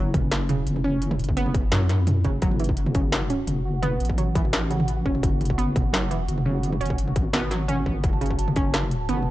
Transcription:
Already playing: F#1 F#3 C#4 E4
0.14 F#1, kick, closed hi-hat, mid tom
0.32 snare, closed hi-hat
0.49 F1 C#3, closed hi-hat, mid tom
0.67 F#1, closed hi-hat
0.76 mid tom
0.84 C#4
1.02 closed hi-hat
1.11 mid tom
1.19 F#1, closed hi-hat
1.24 closed hi-hat
1.29 kick
1.37 B3, closed hi-hat
1.46 mid tom
1.54 kick, closed hi-hat
1.72 F#2 F#3, snare, closed hi-hat, mid tom
1.89 snare, closed hi-hat
2.07 closed hi-hat, mid tom
2.24 F#1 C#3, kick, closed hi-hat
2.42 F#1 F#3 F#4 F#5, kick, closed hi-hat
2.51 mid tom
2.60 E3, closed hi-hat
2.64 closed hi-hat
2.69 kick
2.77 closed hi-hat
2.86 mid tom
2.95 F#1 C#3, kick, closed hi-hat
3.12 snare, closed hi-hat
3.22 mid tom
3.30 C#4, closed hi-hat
3.47 F#1, closed hi-hat, mid tom
3.82 B3, closed hi-hat, mid tom
4.00 A1, closed hi-hat
4.05 closed hi-hat
4.10 kick
4.18 F#3, closed hi-hat, mid tom
4.35 E3, kick, closed hi-hat
4.45 mid tom
4.53 snare, closed hi-hat
4.70 C#3, closed hi-hat
4.80 mid tom
4.88 closed hi-hat
5.06 F#1 C#4, kick
5.15 mid tom
5.23 F#1, kick, closed hi-hat
5.41 closed hi-hat, mid tom
5.45 closed hi-hat
5.50 kick
5.58 B3, closed hi-hat
5.76 F#1, kick, closed hi-hat, mid tom
5.93 F#3, snare, closed hi-hat
6.11 F1 E3, closed hi-hat, mid tom
6.28 F#1, closed hi-hat
6.38 mid tom
6.46 C#3
6.63 closed hi-hat
6.73 mid tom
6.81 F#1 C#4, closed hi-hat
6.86 closed hi-hat
6.90 kick
6.98 closed hi-hat
7.08 mid tom
7.16 G#1, kick, closed hi-hat
7.33 B3, snare, closed hi-hat, mid tom
7.51 F#3, snare, closed hi-hat
7.68 C#4, closed hi-hat, mid tom
7.86 G#1, kick
8.03 F#1 A5, kick, closed hi-hat
8.13 mid tom
8.21 C#3, closed hi-hat
8.26 closed hi-hat
8.31 kick
8.39 closed hi-hat
8.48 mid tom
8.56 F#1 C#4, kick, closed hi-hat
8.74 snare, closed hi-hat
8.83 mid tom
8.91 closed hi-hat
9.09 F#1 B3, closed hi-hat, mid tom
9.14 mid tom
9.18 mid tom
9.22 mid tom

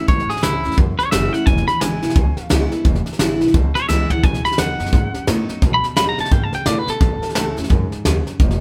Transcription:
0.08 A1 A2 C#5, kick, snare
0.20 snare
0.30 G#4, muted upright bass stroke, snare
0.37 snare
0.41 C#2 E3 A3 C#4 E4, snare, hi-hat pedal
0.64 E2 C#4 E4, snare
0.71 snare
0.78 E2 F#2, kick, snare
0.99 C#5, muted upright bass stroke, snare
1.11 F#1 E3 A3 C#4 E4 E5, snare, hi-hat pedal
1.33 C#4 E4 F#5, muted upright bass stroke, snare
1.46 E1 E2 G#5, kick, snare
1.57 snare
1.68 B5, muted upright bass stroke, snare
1.81 G#1 E3 G#3 B3 E4 G#5, snare, hi-hat pedal
2.03 B1 B3 E4, snare
2.09 snare
2.15 C#2 B2, kick, snare
2.37 muted upright bass stroke, snare
2.49 C#2 E3 G#3 B3 E4, snare, hi-hat pedal
2.72 B3 E4, muted upright bass stroke, snare
2.85 E1 E2, kick, snare
2.95 snare
3.06 muted upright bass stroke, snare
3.13 snare
3.19 G#1 E3 G#3 B3 E4, snare, hi-hat pedal
3.41 B1 B3 E4, snare
3.47 snare
3.54 C#2 B2, kick, snare
3.75 C#5, muted upright bass stroke, snare
3.89 C#2 E3 G#3 B3 E4 E5, snare, hi-hat pedal
4.10 B3 E4 F#5, muted upright bass stroke, floor tom
4.23 B1 B2 G#5, kick, snare
4.34 snare
4.45 B5, muted upright bass stroke, snare
4.52 snare
4.58 D#2 F#3 B3 D#4 F#4 F#5, snare, hi-hat pedal
4.80 F#2, snare
4.86 snare
4.93 F#2 G#2, kick, snare
5.14 muted upright bass stroke, snare
5.27 A2 F#3 B3 D#4 F#4, snare, hi-hat pedal
5.49 muted upright bass stroke, snare
5.62 B1 B2, kick, snare
5.74 B5
5.84 muted upright bass stroke, snare
5.96 D#2 F#3 B3 D#4 F#4 B5, snare, hi-hat pedal
6.09 A#5
6.18 F#2 D#4 F#4 A5, snare
6.25 snare
6.31 G#2 C#3 G5, kick, snare
6.44 A5
6.53 G5, muted upright bass stroke, snare
6.66 A2 B2 D5, snare, hi-hat pedal
6.78 B4
6.88 A4, muted upright bass stroke, snare
7.01 A1 A2, kick, snare
7.22 muted upright bass stroke, snare
7.29 snare
7.35 C#2 E3 A3 C#4 E4, snare, hi-hat pedal
7.57 E2 C#4 E4, snare
7.64 snare
7.70 F#2 G#2, kick, snare
7.92 muted upright bass stroke, snare
8.05 D#2 F#2, snare, hi-hat pedal
8.27 muted upright bass stroke, snare
8.40 E1 E2, kick, snare
8.51 snare

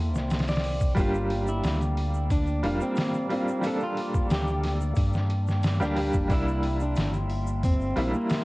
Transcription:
Already playing: E2 G3 A#3 D4 G4 E5 G5 C6
0.15 C2, snare, shaker
0.30 snare, open hi-hat, shaker
0.39 snare, open hi-hat
0.48 D5, snare, open hi-hat, shaker
0.56 snare, open hi-hat
0.64 open hi-hat
0.80 kick, shaker
0.95 G1 G3 A#3 D4 F4 D5 D6, kick, open hi-hat, shaker
1.00 G4
1.15 shaker
1.30 open hi-hat
1.48 E4, shaker
1.64 D2, snare, open hi-hat, shaker
1.81 closed hi-hat, shaker
1.97 open hi-hat
2.14 shaker
2.30 D4, kick, open hi-hat, shaker
2.47 shaker
2.63 F1 G3 A#3 D4 F4, open hi-hat
2.81 C4, shaker
2.96 snare, open hi-hat, shaker
3.14 shaker
3.29 G3 A#3 C4 D4 F4, open hi-hat
3.48 shaker
3.61 G3 A#3 D4, open hi-hat, shaker
3.66 A4
3.80 F4, shaker
3.97 open hi-hat
4.14 kick, shaker
4.30 D2 G4, snare, open hi-hat, shaker
4.47 shaker
4.64 snare, open hi-hat
4.81 shaker
4.96 G2, kick, open hi-hat, shaker
5.13 snare, shaker
5.30 open hi-hat
5.47 snare, shaker
5.63 snare, open hi-hat, shaker
5.80 D2 G3 A#3 D4 G4, snare, shaker
5.96 G3 A#3 D4 G4, open hi-hat
6.13 F1, kick, shaker
6.28 C2 G3 A#3 D4 E5 C6, kick, open hi-hat, shaker
6.32 E4
6.48 shaker
6.63 open hi-hat
6.80 D4, shaker
6.96 G1, snare, open hi-hat, shaker
7.13 closed hi-hat, shaker
7.30 open hi-hat
7.47 shaker
7.63 C4, kick, open hi-hat, shaker
7.81 shaker
7.96 A#1 G3 A#3 D4 E4, open hi-hat
8.14 A#3, shaker
8.29 snare, open hi-hat, shaker

